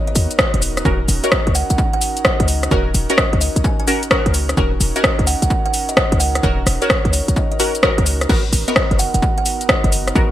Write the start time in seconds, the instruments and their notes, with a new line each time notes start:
Already playing: analog synth pad B3 D#4 F#4 A#4
0.07 kalimba D#5, closed hi-hat
0.15 808-style bass D#2, open hi-hat, cabasa
0.31 closed hi-hat, cabasa
0.39 kick, cross-stick, cabasa
0.54 808-style bass D#1, closed hi-hat
0.62 analog synth pad C#4 A#4, open hi-hat, cabasa
0.77 cross-stick, closed hi-hat, cabasa
0.85 808-style bass D#1, synth stab C#4 F#4 A#4, kick, cabasa
1.08 808-style bass D#1, open hi-hat, cabasa
1.24 synth stab C#4 F#4 A#4, kalimba D#5, closed hi-hat, cabasa
1.32 kick, cross-stick, cabasa
1.47 808-style bass C#2, closed hi-hat
1.55 kalimba F#5, open hi-hat, cabasa
1.70 808-style bass A#1, kalimba F#5, closed hi-hat, cabasa
1.78 kick, cabasa
1.93 kalimba F#5, closed hi-hat
2.01 open hi-hat, cabasa
2.17 closed hi-hat, cabasa
2.25 kalimba D#5, kick, cross-stick, cabasa
2.40 808-style bass C#2, kalimba D#5, closed hi-hat
2.48 open hi-hat, cabasa
2.63 cross-stick, closed hi-hat, cabasa
2.71 808-style bass D#1, synth stab C#4 F#4 A#4, kick, cabasa
2.94 808-style bass D#1, open hi-hat, cabasa
3.10 synth stab C#4 F#4 A#4, kalimba D#5, closed hi-hat, cabasa
3.18 kalimba D#5, kick, cross-stick, cabasa
3.33 808-style bass C#2, closed hi-hat
3.41 kalimba D#5, open hi-hat, cabasa
3.56 808-style bass A#1, closed hi-hat, cabasa
3.64 kalimba G#5, kick, cabasa
3.80 kalimba G#5, closed hi-hat
3.87 synth stab C#4 F#4 A#4, open hi-hat, cabasa
4.03 closed hi-hat, cabasa
4.11 synth stab C#4 F#4 A#4, kick, cross-stick, cabasa
4.26 808-style bass C#2, closed hi-hat
4.34 open hi-hat, cabasa
4.49 cross-stick, closed hi-hat, cabasa
4.57 808-style bass D#1, synth stab C#4 F#4 A#4, kick, cabasa
4.80 808-style bass D#1, open hi-hat, cabasa
4.96 synth stab C#4 F#4 A#4, kalimba D#5, closed hi-hat, cabasa
5.04 kick, cross-stick, cabasa
5.19 808-style bass C#2, closed hi-hat
5.27 kalimba F#5, open hi-hat, cabasa
5.42 808-style bass A#1, kalimba F#5, closed hi-hat, cabasa
5.50 kick, cabasa
5.66 kalimba F#5, closed hi-hat
5.74 open hi-hat, cabasa
5.89 kalimba D#5, closed hi-hat, cabasa
5.97 kalimba D#5, kick, cross-stick, cabasa
6.12 808-style bass C#2, closed hi-hat
6.20 kalimba F#5, open hi-hat, cabasa
6.35 cross-stick, closed hi-hat, cabasa
6.43 808-style bass D#1, synth stab C#4 F#4 A#4, kick, cabasa
6.67 808-style bass D#1, cross-stick, open hi-hat, cabasa
6.82 synth stab C#4 F#4 A#4, kalimba C#5, closed hi-hat, cabasa
6.90 kick, cross-stick, cabasa
7.05 808-style bass C#2, closed hi-hat
7.13 kalimba C#5, open hi-hat, cabasa
7.28 808-style bass A#1, closed hi-hat, cabasa
7.36 kalimba D#5, kick, cabasa
7.51 kalimba D#5, closed hi-hat
7.60 synth stab C#4 F#4 A#4, open hi-hat, cabasa
7.75 closed hi-hat, cabasa
7.83 synth stab C#4 F#4 A#4, kick, cross-stick, cabasa
7.98 808-style bass C#2, closed hi-hat
8.06 open hi-hat, cabasa
8.21 cross-stick, closed hi-hat, cabasa
8.29 808-style bass G#1, synth stab B3 F#4 A#4, analog synth pad B3 D#4 F#4, kick, crash, cabasa
8.53 808-style bass G#1, open hi-hat, cabasa
8.68 synth stab B3 F#4 A#4, kalimba D#5, closed hi-hat, cabasa
8.76 kick, cross-stick, cabasa
8.91 808-style bass F#1, closed hi-hat
8.99 kalimba F#5, open hi-hat, cabasa
9.14 808-style bass D#1, kalimba F#5, closed hi-hat, cabasa
9.22 kick, cabasa
9.38 kalimba F#5, closed hi-hat
9.46 open hi-hat, cabasa
9.61 closed hi-hat, cabasa
9.69 kalimba D#5, kick, cross-stick, cabasa
9.84 808-style bass F#1, kalimba D#5, closed hi-hat
9.92 open hi-hat, cabasa
10.08 cross-stick, closed hi-hat, cabasa
10.15 808-style bass G#1, synth stab B3 F#4 A#4, kick, cabasa